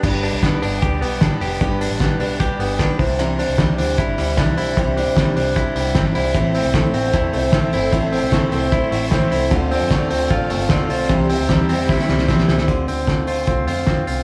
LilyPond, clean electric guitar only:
\new Staff \with { instrumentName = "Clean electric guitar" } { \time 4/4 \key c \major \tempo 4 = 152 g,8 d'8 b8 d'8 g'8 b8 d'8 g'8 | g,8 d'8 b8 d'8 g'8 b8 d'8 c8 | c8 d'8 g8 d'8 e'8 g8 d'8 e'8 | c8 d'8 g8 d'8 e'8 g8 c'16 d'16 e'8 |
a,8 c'8 a8 c'8 e'8 a8 c'8 e'8 | a,8 c'8 a8 c'8 e'8 a8 c'8 e'8 | d8 c'8 a8 c'8 f'8 a8 c'8 f'8 | c8 c'8 g8 c'8 e'8 g8 c'8 e'8 |
d8 c'8 a8 f'8 c'8 f'8 c'8 f'8 | }